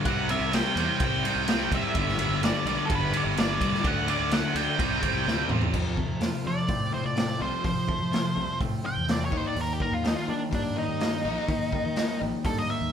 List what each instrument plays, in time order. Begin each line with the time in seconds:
0.05 fingered electric bass C2, overdriven electric guitar C3 G3 C4, lead electric guitar F#5, kick, ride
0.29 overdriven electric guitar C3 G3 C4, lead electric guitar E5, ride
0.40 fingered electric bass C2
0.52 overdriven electric guitar C3 G3 C4, lead electric guitar G5, snare, ride
0.76 fingered electric bass E2, overdriven electric guitar C3 G3 C4, lead electric guitar G5, ride
1.00 fingered electric bass C2, overdriven electric guitar C3 G3 C4, kick, ride
1.04 lead electric guitar G5
1.24 overdriven electric guitar C3 G3 C4, ride
1.35 fingered electric bass C2
1.47 overdriven electric guitar C3 G3 C4, snare, ride
1.71 fingered electric bass C2, overdriven electric guitar C3 G3 C4, lead electric guitar E5, kick, ride
1.95 fingered electric bass G1, overdriven electric guitar G2 D3 G3, kick, ride
2.08 snare
2.19 overdriven electric guitar G2 D3 G3, ride
2.29 fingered electric bass G1
2.42 overdriven electric guitar G2 D3 G3, lead electric guitar D5, snare, ride
2.65 fingered electric bass B1, overdriven electric guitar G2 D3 G3, lead electric guitar D5, ride
2.86 overdriven electric guitar G2 D3 G3, lead electric guitar A4, kick, ride
2.90 fingered electric bass G1
2.95 lead electric guitar B4
3.13 overdriven electric guitar G2 D3 G3, ride
3.17 lead electric guitar D5
3.25 fingered electric bass G1
3.37 overdriven electric guitar G2 D3 G3, lead electric guitar D5, snare, ride
3.60 fingered electric bass C2, overdriven electric guitar G2 D3 G3, kick, ride
3.74 snare
3.84 fingered electric bass D2, overdriven electric guitar D3 A3 D4, lead electric guitar F#5, kick, ride
4.07 overdriven electric guitar D3 A3 D4, lead electric guitar D5, ride
4.20 fingered electric bass D2
4.31 overdriven electric guitar D3 A3 D4, lead electric guitar F#5, snare, ride
4.54 fingered electric bass D2, overdriven electric guitar D3 A3 D4, lead electric guitar G5, ride
4.78 fingered electric bass C2, overdriven electric guitar C3 G3 C4, kick, ride
5.00 overdriven electric guitar C3 G3 C4, kick, ride
5.14 fingered electric bass C2
5.25 fingered electric bass D2, overdriven electric guitar C3 G3 C4, snare
5.49 fingered electric bass E2, overdriven electric guitar C3 G3 C4, mid tom
5.61 floor tom
5.72 overdriven electric guitar F2 C3 F3, fingered electric bass F2, clean electric guitar F3, kick, crash
5.97 overdriven electric guitar F2 C3, clean electric guitar A3, kick
6.10 fingered electric bass F2
6.20 overdriven electric guitar F2 C3, clean electric guitar F4, snare, open hi-hat
6.44 overdriven electric guitar F2 C3, fingered electric bass F3, clean electric guitar A3, lead electric guitar D5
6.68 overdriven electric guitar F2 C3, fingered electric bass A2, clean electric guitar C4, kick, open hi-hat
6.92 overdriven electric guitar F2 C3, clean electric guitar F3, lead electric guitar C5
7.05 fingered electric bass A2, lead electric guitar D5
7.16 overdriven electric guitar F2 C3, clean electric guitar C4, lead electric guitar D5, snare, open hi-hat
7.39 fingered electric bass C2, overdriven electric guitar F2 C3 F3, clean electric guitar F4, lead electric guitar C5
7.64 overdriven electric guitar F2 C3, fingered electric bass F3, clean electric guitar F3, lead electric guitar C5, kick, open hi-hat
7.87 overdriven electric guitar F2 C3, clean electric guitar A3, kick
8.01 fingered electric bass F3
8.11 overdriven electric guitar F2 C3, clean electric guitar F4, snare, open hi-hat
8.35 fingered electric bass C2, overdriven electric guitar F2 C3, clean electric guitar A3
8.60 overdriven electric guitar F2 C3, fingered electric bass A2, clean electric guitar C4, kick, open hi-hat
8.84 overdriven electric guitar F2 C3, lead electric guitar G5
8.97 fingered electric bass E2
9.08 overdriven electric guitar F2 C3, clean electric guitar C4, lead electric guitar D5, snare, open hi-hat
9.25 lead electric guitar C#5
9.31 fingered electric bass D#2, clean electric guitar D#3, overdriven electric guitar D#3 A#3 D#4, kick
9.37 lead electric guitar C5
9.48 lead electric guitar D5
9.55 fingered electric bass D#2, overdriven electric guitar D#3 A#3, clean electric guitar D#3, open hi-hat
9.61 lead electric guitar A#4
9.73 lead electric guitar G4
9.80 overdriven electric guitar D#3 A#3, clean electric guitar G3, lead electric guitar A#4, kick
9.92 fingered electric bass D#2, lead electric guitar F4
10.04 overdriven electric guitar D#3 A#3, clean electric guitar D#4, lead electric guitar D#4, snare, open hi-hat
10.17 lead electric guitar F4
10.27 overdriven electric guitar D#3 A#3, fingered electric bass D#3, clean electric guitar G3, lead electric guitar D4
10.51 fingered electric bass G2, overdriven electric guitar D#3 A#3, clean electric guitar A#3, lead electric guitar D4, kick, open hi-hat
10.76 overdriven electric guitar D#3 A#3, clean electric guitar D#3, lead electric guitar D#4
10.88 fingered electric bass G2
11.00 overdriven electric guitar D#3 A#3, clean electric guitar A#3, snare, open hi-hat
11.24 fingered electric bass A#1, overdriven electric guitar D#3 A#3 D#4, clean electric guitar D#4
11.48 clean electric guitar D#3, fingered electric bass D#3, overdriven electric guitar D#3 A#3, kick, open hi-hat
11.72 overdriven electric guitar D#3 A#3, clean electric guitar G3, kick
11.86 fingered electric bass D#3
11.96 overdriven electric guitar D#3 A#3, clean electric guitar D#4, snare, open hi-hat
12.21 fingered electric bass A#1, overdriven electric guitar D#3 A#3, clean electric guitar G3
12.44 fingered electric bass G2, overdriven electric guitar D#3 A#3, clean electric guitar A#3, lead electric guitar A4, kick, open hi-hat
12.58 lead electric guitar D#5
12.68 clean electric guitar D#3, overdriven electric guitar D#3 A#3, lead electric guitar E5
12.81 fingered electric bass D#2